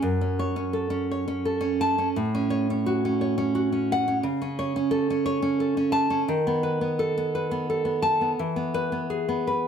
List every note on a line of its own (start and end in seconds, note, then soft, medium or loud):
0.02 2.10 F#2 medium
0.21 0.55 C#4 medium
0.39 1.10 C#5 medium
0.56 0.89 C#4 medium
0.73 1.44 A4 medium
0.90 1.26 C#4 medium
1.11 1.80 C#5 medium
1.28 1.59 C#4 medium
1.45 2.15 A4 medium
1.61 1.97 C#4 medium
1.81 2.08 A5 loud
1.98 2.15 C#4 medium
2.16 4.20 A2 medium
2.35 2.69 C#4 medium
2.50 3.20 C#5 medium
2.70 3.04 C#4 medium
2.86 3.54 F#4 medium
3.05 3.36 C#4 medium
3.21 4.23 C#5 medium
3.38 3.71 C#4 medium
3.55 4.23 F#4 medium
3.72 4.07 C#4 medium
3.92 4.18 F#5 loud
4.08 4.24 C#4 medium
4.23 6.24 C#3 medium
4.42 4.75 C#4 medium
4.59 5.24 C#5 medium
4.76 5.09 C#4 medium
4.91 5.59 A4 medium
5.10 5.41 C#4 medium
5.26 5.92 C#5 medium
5.42 5.76 C#4 medium
5.60 6.28 A4 medium
5.77 6.09 C#4 medium
5.92 6.20 A5 loud
6.10 6.28 C#4 medium
6.28 8.34 D#3 medium
6.47 6.80 B3 medium
6.63 7.34 B4 medium
6.81 7.16 B3 medium
6.99 7.68 A4 medium
7.18 7.50 B3 medium
7.35 8.38 B4 medium
7.51 7.84 B3 medium
7.70 8.38 A4 medium
7.85 8.20 B3 medium
8.02 8.30 A5 medium
8.21 8.38 B3 medium
8.39 9.68 E3 medium
8.56 8.91 B3 medium
8.74 9.03 B4 medium
8.92 9.27 B3 medium
9.10 9.68 G#4 medium
9.29 9.67 B3 medium
9.47 9.68 B4 medium